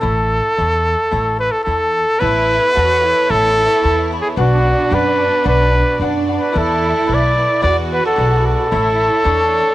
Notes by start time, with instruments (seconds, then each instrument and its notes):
0.00 upright bass A1, cavaquinho E4 A4 C#5 E5, trumpet A4
0.57 upright bass E2, cavaquinho E4 A4 C#5 E5
1.11 upright bass A1, cavaquinho E4 A4 C#5 E5
1.40 trumpet B4
1.51 trumpet A4
1.64 upright bass E2, cavaquinho E4 A4, trumpet A4
1.68 cavaquinho C#5 E5
2.19 upright bass A1, violin section B3 E4 A4 C#5, trumpet B4, cavaquinho C#5 E5 A5 B5
2.75 upright bass E2, violin section F#4, cavaquinho C#5 E5 A5 B5
3.05 violin section E4
3.29 upright bass A1, trumpet A4, cavaquinho C#5 E5 A5 B5
3.83 upright bass E2, cavaquinho C#5 E5 A5 B5
4.12 cavaquinho E5 A5 B5
4.21 trumpet G#4
4.36 upright bass B1, cavaquinho D4 B4 D5 F#5, violin section D4 F#4 D5, trumpet F#4
4.91 upright bass F#2, cavaquinho D4 B4 D5 F#5
4.95 trumpet B4
5.44 upright bass B1, cavaquinho D4 B4 D5 F#5
5.49 trumpet B4
5.99 upright bass F#2, violin section D4, cavaquinho D4 B4 D5 F#5
6.28 cavaquinho B4 D5 F#5
6.39 trumpet B4
6.52 upright bass E2, cavaquinho E4 A4 B4 D5, violin section E4
6.58 violin section A3 E4, trumpet A4
7.07 upright bass B1, cavaquinho E4 A4 B4 D5
7.14 trumpet D5
7.38 cavaquinho A4 B4 D5
7.62 upright bass E2, violin section B3 F#4, cavaquinho E4 G#4 B4 D5, trumpet D5
7.93 trumpet B4
8.06 trumpet A4
8.16 upright bass B1, cavaquinho E4 G#4 B4 D5
8.47 trumpet A4
8.71 upright bass A1, violin section A3 E4 C#5, cavaquinho E4 A4 C#5 E5
9.24 upright bass E2, violin section D4, cavaquinho E4 A4 C#5 E5